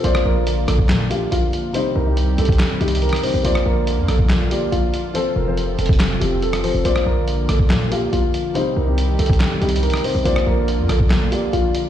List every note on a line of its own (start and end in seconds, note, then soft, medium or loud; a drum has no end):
0.03 0.25 A#1 loud
0.03 1.73 D3 medium
0.03 1.73 F3 medium
0.03 0.61 A#3 loud
0.03 1.73 A#3 medium
0.03 1.73 F4 medium
0.03 0.61 F4 medium
0.03 0.21 C5 loud
0.03 0.62 D5 loud
0.03 closed hi-hat medium
0.15 cross-stick loud
0.25 0.66 A#1 loud
0.25 0.65 A#4 medium
0.47 closed hi-hat medium
0.68 0.91 A#1 loud
0.68 1.08 A4 medium
0.68 cross-stick medium
0.68 closed hi-hat medium
0.79 kick medium
0.89 1.09 A#2 loud
0.89 snare loud
0.89 clap loud
0.89 closed hi-hat medium
1.09 1.53 A#3 medium
1.09 1.53 F4 medium
1.09 1.27 G4 medium
1.09 1.54 F5 medium
1.09 closed hi-hat medium
1.32 1.52 A#1 loud
1.32 1.72 F4 medium
1.32 closed hi-hat medium
1.53 closed hi-hat medium
1.73 1.95 C3 loud
1.73 3.43 D#3 medium
1.73 3.43 G3 medium
1.73 1.96 G3 medium
1.73 3.43 C4 medium
1.73 1.96 D#4 loud
1.73 3.43 G4 medium
1.73 1.91 C5 loud
1.73 closed hi-hat medium
1.96 2.36 C2 loud
1.96 2.36 A#4 medium
2.05 2.56 C3 medium
2.05 2.56 G3 medium
2.05 2.57 D#4 medium
2.17 closed hi-hat medium
2.38 2.59 C2 loud
2.38 2.78 A4 medium
2.38 closed hi-hat medium
2.45 kick loud
2.45 closed hi-hat medium
2.52 closed hi-hat medium
2.59 snare loud
2.59 clap loud
2.59 closed hi-hat medium
2.79 3.11 C2 loud
2.79 3.09 C3 medium
2.79 3.09 G3 medium
2.79 3.10 D#4 medium
2.79 2.97 G4 medium
2.79 closed hi-hat soft
2.88 closed hi-hat medium
2.95 closed hi-hat medium
3.02 3.19 A#4 medium
3.02 closed hi-hat soft
3.09 cross-stick loud
3.09 closed hi-hat medium
3.16 closed hi-hat medium
3.22 3.37 C3 medium
3.22 3.38 G3 medium
3.22 3.38 D#4 medium
3.22 3.40 C5 medium
3.22 open hi-hat medium
3.34 3.44 C2 loud
3.43 3.65 A#1 loud
3.43 5.13 D3 medium
3.43 5.13 F3 medium
3.43 4.01 A#3 loud
3.43 5.13 A#3 medium
3.43 4.02 F4 medium
3.43 6.82 F4 medium
3.43 3.61 C5 loud
3.43 4.02 D5 loud
3.43 closed hi-hat medium
3.55 cross-stick loud
3.66 3.99 A#1 loud
3.66 4.06 A#4 medium
3.87 closed hi-hat medium
3.98 4.08 F2 loud
4.08 4.49 A#1 loud
4.08 4.48 A4 medium
4.08 cross-stick medium
4.08 closed hi-hat medium
4.19 kick medium
4.29 snare loud
4.29 clap loud
4.29 closed hi-hat medium
4.50 4.93 A#3 medium
4.50 4.94 F4 medium
4.50 4.67 G4 medium
4.50 4.94 D5 medium
4.50 closed hi-hat medium
4.72 4.93 A#1 loud
4.72 5.12 F4 medium
4.72 closed hi-hat medium
4.94 closed hi-hat medium
5.14 6.83 C3 medium
5.14 5.36 F3 medium
5.14 6.83 F3 medium
5.14 5.36 C4 medium
5.14 6.83 C4 medium
5.14 5.37 A4 loud
5.14 5.31 C5 loud
5.14 closed hi-hat medium
5.36 5.77 F1 loud
5.36 5.76 A#4 medium
5.45 5.96 F3 medium
5.45 5.97 C4 medium
5.45 5.97 C5 medium
5.57 closed hi-hat medium
5.79 6.19 F1 loud
5.79 6.19 A4 medium
5.79 closed hi-hat medium
5.86 kick medium
5.86 closed hi-hat medium
5.93 closed hi-hat medium
6.00 snare loud
6.00 clap loud
6.00 closed hi-hat medium
6.20 6.72 F1 loud
6.20 6.49 F3 medium
6.20 6.50 C4 medium
6.20 6.38 G4 medium
6.20 6.50 A4 medium
6.20 closed hi-hat medium
6.42 6.59 A4 medium
6.42 closed hi-hat medium
6.53 cross-stick loud
6.53 closed hi-hat medium
6.63 6.77 F3 medium
6.63 6.78 C4 medium
6.63 6.79 A4 medium
6.63 6.80 C5 medium
6.63 open hi-hat medium
6.74 6.85 F1 loud
6.84 7.05 A#1 loud
6.84 8.54 D3 medium
6.84 8.54 F3 medium
6.84 7.42 A#3 loud
6.84 8.54 A#3 medium
6.84 8.54 F4 medium
6.84 7.42 F4 medium
6.84 7.02 C5 loud
6.84 7.43 D5 loud
6.84 closed hi-hat medium
6.96 cross-stick loud
7.06 7.47 A#1 loud
7.06 7.46 A#4 medium
7.28 closed hi-hat medium
7.49 7.72 A#1 loud
7.49 7.89 A4 medium
7.49 cross-stick medium
7.49 closed hi-hat medium
7.59 kick loud
7.70 7.90 A#2 loud
7.70 snare loud
7.70 clap loud
7.70 closed hi-hat medium
7.90 8.34 A#3 medium
7.90 8.34 F4 medium
7.90 8.08 G4 medium
7.90 8.35 F5 medium
7.90 closed hi-hat medium
8.13 8.33 A#1 loud
8.13 8.53 F4 medium
8.13 closed hi-hat medium
8.34 closed hi-hat medium
8.54 8.76 C3 loud
8.54 10.24 D#3 medium
8.54 10.24 G3 medium
8.54 8.77 G3 medium
8.54 10.24 C4 medium
8.54 8.77 D#4 loud
8.54 10.24 G4 medium
8.54 8.72 C5 loud
8.54 closed hi-hat medium
8.77 9.17 C2 loud
8.77 9.17 A#4 medium
8.86 9.36 C3 medium
8.86 9.37 G3 medium
8.86 9.38 D#4 medium
8.98 closed hi-hat medium
9.19 9.39 C2 loud
9.19 9.59 A4 medium
9.19 closed hi-hat medium
9.26 kick medium
9.26 closed hi-hat medium
9.33 closed hi-hat medium
9.40 snare loud
9.40 clap medium
9.40 closed hi-hat medium
9.60 9.92 C2 loud
9.60 9.89 C3 medium
9.60 9.90 G3 medium
9.60 9.91 D#4 medium
9.60 9.78 G4 medium
9.60 closed hi-hat soft
9.69 closed hi-hat medium
9.76 closed hi-hat medium
9.83 10.00 A#4 medium
9.83 closed hi-hat soft
9.90 cross-stick loud
9.90 closed hi-hat medium
9.97 closed hi-hat medium
10.03 10.18 C3 medium
10.03 10.18 G3 medium
10.03 10.19 D#4 medium
10.03 10.21 C5 medium
10.03 open hi-hat medium
10.15 10.25 C2 loud
10.24 10.46 A#1 loud
10.24 11.89 D3 medium
10.24 11.89 F3 medium
10.24 10.82 A#3 loud
10.24 11.89 A#3 medium
10.24 10.82 F4 medium
10.24 11.89 F4 medium
10.24 10.42 C5 loud
10.24 10.83 D5 loud
10.24 closed hi-hat medium
10.36 cross-stick loud
10.47 10.80 A#1 loud
10.47 10.87 A#4 medium
10.68 closed hi-hat medium
10.79 10.89 F2 loud
10.89 11.30 A#1 loud
10.89 11.29 A4 medium
10.89 cross-stick medium
10.89 closed hi-hat medium
11.00 kick loud
11.10 snare loud
11.10 clap loud
11.10 closed hi-hat medium
11.31 11.74 A#3 medium
11.31 11.75 F4 medium
11.31 11.48 G4 medium
11.31 11.75 D5 medium
11.31 closed hi-hat medium
11.53 11.74 A#1 loud
11.53 11.89 F4 medium
11.53 closed hi-hat medium
11.75 closed hi-hat medium